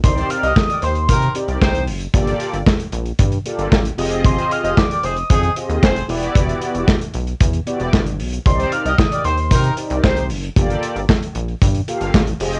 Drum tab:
HH |xxxx-xxxxxxx-xox|xxxx-xxxxxxx-xox|xxxx-xxxxxxx-xox|xxxx-xxxxxxx-xox|
CP |----x-------x---|----x-------x---|----x-------x---|----x-------x---|
SD |----o-------o---|----o-------o---|----o-------o---|----o-------o---|
BD |o---o---o---o---|o---o---o---o---|o---o---o---o---|o---o---o---o---|

HH |xxxx-xxxxxxx-xox|xxxx-xxxxxxx-xox|
CP |----x-------x---|----x-------x---|
SD |----o-------o---|----o-------o---|
BD |o---o---o---o---|o---o---o---o---|